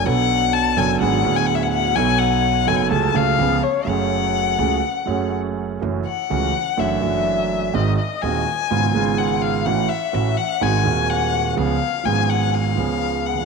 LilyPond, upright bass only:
\new Staff \with { instrumentName = "Upright bass" } { \clef bass \time 4/4 \key fis \minor \tempo 4 = 126 b,,4. fis,,8 gis,,8 d,4. | b,,4. fis,,8 cis,8 cis,8 cis,8 r8 | fis,,4. cis,8 r8 fis,,4. | fis,,8 r8 cis,8 r8 fis,,8 fis,,4. |
gis,,8 r8 dis,8 r8 gis,,8 gis,,4. | a,,8 r8 a,,8 r8 gis,,8 dis,4. | cis,8 r8 gis,,4. cis,4. | }